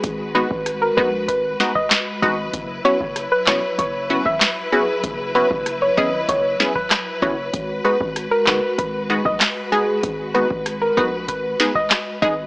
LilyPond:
<<
  \new Staff \with { instrumentName = "Synth pluck" } { \time 4/4 \key gis \minor \tempo 4 = 96 r8 b'16 r8 ais'16 b'16 r16 b'16 r8 dis''16 r8 dis''16 r16 | r8 cis''16 r8 b'16 cis''16 r16 cis''16 r8 e''16 r8 gis'16 r16 | r8 b'16 r8 cis''16 dis''16 r16 cis''16 r8 b'16 r8 cis''16 r16 | r8 b'16 r8 ais'16 b'16 r16 b'16 r8 dis''16 r8 gis'16 r16 |
r8 b'16 r8 ais'16 b'16 r16 b'16 r8 dis''16 r8 dis''16 r16 | }
  \new Staff \with { instrumentName = "String section" } { \time 4/4 \key gis \minor << { b'1~ | b'1~ | b'1~ | b'1~ |
b'1 | } \\ { <gis fis'>1 | <fis e'>1~ | <fis e'>1 | <gis fis'>1~ |
<gis fis'>1 | } >> }
  \new Staff \with { instrumentName = "Synth stab" } { \time 4/4 \key gis \minor r8 <gis b dis' fis'>8 r8 <gis b dis' fis'>8 r8 <gis b dis' fis'>8 r8 <gis b dis' fis'>8 | r8 <b cis' e' fis'>8 r8 <b cis' e' fis'>8 r8 <b cis' e' fis'>8 r8 <b cis' e' fis'>8 | r8 <b cis' e' fis'>8 r8 <b cis' e' gis'>8 r8 <b cis' e' gis'>8 r8 <b cis' e' fis'>8 | r8 <gis b dis' fis'>8 r8 <gis b dis' fis'>8 r8 <gis b dis' fis'>8 r8 <gis b dis' gis'>8 |
r8 <gis b dis' fis'>8 r8 <gis b dis' fis'>8 r8 <gis b dis' gis'>8 r8 <gis b dis' gis'>8 | }
  \new Staff \with { instrumentName = "808-style bass" } { \clef bass \time 4/4 \key gis \minor gis,,8. gis,,8. ais,,8 gis,,8 r4 gis,,8 | fis,,8 r16 fis,,8 r16 e,,16 r16 fis,,8. gis,,16 r4 | fis,,8. fis,,8. gis,,8 fis,,8 r4 fis,,8 | gis,,8 r16 gis,,8 r16 fis,,16 r16 gis,,8. ais,,16 r4 |
gis,,8. gis,,8. ais,,8 gis,,8 r4 gis,,8 | }
  \new DrumStaff \with { instrumentName = "Drums" } \drummode { \time 4/4 <hh bd>8. bd16 <hh ss>4 <hh bd>8 sn16 bd16 <hc hh sn>4 | <hh bd>8. bd16 <hh ss>8 <hc sn>8 <hh bd>8. bd16 <hc hh sn>4 | <hh bd>8. bd16 <hh ss>4 <hh bd>8 sn16 bd16 <hc hh ss sn>8 bd8 | <hh bd>8. bd16 <hh ss>8 <hc sn>8 <hh bd>8. bd16 <hc hh sn>4 |
<hh bd>8. bd16 <hh ss>4 <hh bd>8 sn16 bd16 <hc hh sn>4 | }
>>